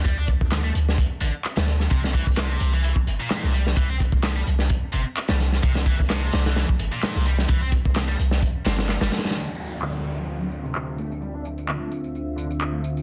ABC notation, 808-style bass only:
X:1
M:4/4
L:1/16
Q:"Swing 16ths" 1/4=129
K:Dm
V:1 name="808-style bass" clef=bass
D,,3 D,,3 D,,3 z A,,, z2 D,,3 | C,,3 C,,3 C,,3 z G,,, z2 C,,3 | C,,3 C,,3 C,,3 z G,,, z2 C,,3 | C,,3 C,,3 C,,3 z G,,, z2 C,,3 |
C,,3 C,,3 C,,3 z G,,,3 G,,, z2 | z16 | z16 |]